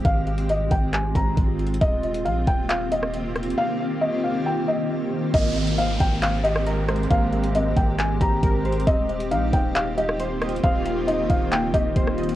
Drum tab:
CC |------------------------------------------------------------------------------------------------|------------------------------------------------------------------------------------------------|------------------------------------------------------------------------------------------------|x-----------------------------------------------------------------------------------------------|
HH |x-----------x-----x-----x-----------x-----------x-----------x-----------x-----------x---x---x---|x-----------x-----x-----x-----------x-----------x-----------x-----------x-----------x---x---x---|------------------------------------------------------------------------------------------------|x-----------x-----x-----x-----------x-----------x-----------x-----------x-----------x---x---x---|
CP |------------------------------------------------x-----------------------------------------------|------------------------------------------------x-----------------------------------------------|------------------------------------------------------------------------------------------------|------------------------------------------------x-----------------------------------------------|
SD |------------------------------------------------------------------------------------------------|------------------------------------------------------------------r-----------------r-----------|------------------------------------------------------------------------------------------------|------------------------------------------------------------------r-----------------r-----------|
BD |o-----------------------------------o-----------------------o-----------o-----------------------|o-----------------------------------o-----------------------------------------------------------|------------------------------------------------------------------------------------------------|o-----------------------------------o-----------------------------------------------------------|

CC |------------------------------------------------------------------------------------------------|------------------------------------------------------------------------------------------------|------------------------------------------------------------------------------------------------|
HH |x-----------x-----x-----x-----------x-----------x-----------x-----------x-----------x---x---x---|x-----------x-----x-----x-----------x-----------x-----------x-----------x-----------x---x---x---|x-----------x-----------x-----------x-----------x-----------x-----------x-----------x--x--x-----|
CP |------------------------------------------------x-----------------------------------------------|------------------------------------------------x-----------------------------------------------|------------------------------------------------x-----------------------------------------------|
SD |------------------------------------------------------------------------------------------------|------------------------------------------------------------------r-----------------r-----------|------------------------------------------------------------------------------r-----------------|
BD |o-----------------------------------o-----------------------o-----------o-----------------------|o-----------------------------------o-----------------------------------------------------------|o-----------------------------------o-----------------------o-----------o-----------------------|